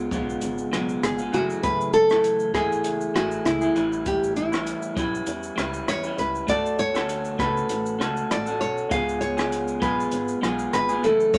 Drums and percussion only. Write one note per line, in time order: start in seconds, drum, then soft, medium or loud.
0.11 kick medium
0.11 closed hi-hat soft
0.11 shaker soft
0.29 shaker soft
0.41 closed hi-hat medium
0.41 shaker medium
0.58 shaker soft
0.73 cross-stick medium
0.73 closed hi-hat soft
0.73 shaker medium
0.89 shaker soft
1.03 cross-stick medium
1.03 closed hi-hat medium
1.03 shaker medium
1.19 shaker medium
1.33 closed hi-hat soft
1.33 shaker soft
1.50 shaker soft
1.64 kick loud
1.64 closed hi-hat medium
1.64 shaker medium
1.81 shaker soft
1.93 closed hi-hat soft
1.93 shaker soft
2.10 cross-stick loud
2.10 shaker medium
2.24 closed hi-hat medium
2.24 shaker medium
2.40 shaker medium
2.54 kick medium
2.54 cross-stick medium
2.54 closed hi-hat soft
2.54 shaker soft
2.72 shaker soft
2.84 closed hi-hat medium
2.84 shaker medium
3.01 shaker soft
3.16 cross-stick medium
3.16 closed hi-hat medium
3.16 shaker medium
3.31 shaker soft
3.46 cross-stick medium
3.46 closed hi-hat medium
3.46 shaker medium
3.61 shaker medium
3.76 closed hi-hat soft
3.76 shaker soft
3.93 shaker soft
4.06 kick loud
4.06 closed hi-hat medium
4.06 shaker medium
4.24 shaker soft
4.36 closed hi-hat soft
4.36 shaker soft
4.53 cross-stick medium
4.53 shaker medium
4.67 closed hi-hat medium
4.67 shaker medium
4.82 shaker medium
4.97 kick medium
4.97 closed hi-hat soft
4.97 shaker soft
5.15 shaker soft
5.27 closed hi-hat medium
5.27 shaker medium
5.43 shaker soft
5.58 cross-stick medium
5.58 closed hi-hat soft
5.58 shaker medium
5.74 shaker soft
5.88 cross-stick medium
5.88 closed hi-hat medium
5.88 shaker medium
6.03 shaker medium
6.18 closed hi-hat soft
6.18 shaker soft
6.35 shaker soft
6.48 kick loud
6.48 closed hi-hat medium
6.48 shaker medium
6.66 shaker soft
6.79 closed hi-hat medium
6.79 shaker soft
6.95 cross-stick medium
6.95 shaker medium
7.09 closed hi-hat medium
7.09 shaker medium
7.25 shaker medium
7.39 kick medium
7.39 cross-stick medium
7.39 closed hi-hat soft
7.39 shaker soft
7.57 shaker soft
7.69 closed hi-hat medium
7.69 shaker medium
7.86 shaker medium
8.01 cross-stick medium
8.01 closed hi-hat soft
8.01 shaker soft
8.17 shaker soft
8.31 cross-stick medium
8.31 closed hi-hat medium
8.31 shaker medium
8.46 shaker medium
8.61 closed hi-hat soft
8.61 shaker soft
8.78 shaker soft
8.91 kick loud
8.91 closed hi-hat medium
8.91 shaker medium
9.09 shaker soft
9.22 closed hi-hat soft
9.22 shaker medium
9.38 cross-stick loud
9.38 shaker medium
9.52 closed hi-hat medium
9.52 shaker medium
9.68 shaker medium
9.82 kick medium
9.82 closed hi-hat soft
9.82 shaker soft
10.00 shaker soft
10.12 closed hi-hat medium
10.12 shaker medium
10.28 shaker soft
10.43 cross-stick medium
10.43 closed hi-hat medium
10.43 shaker medium
10.59 shaker soft
10.73 cross-stick medium
10.73 closed hi-hat medium
10.73 shaker medium
10.89 shaker medium
11.04 closed hi-hat soft
11.04 shaker soft
11.20 shaker soft
11.34 kick loud
11.34 closed hi-hat medium
11.34 shaker medium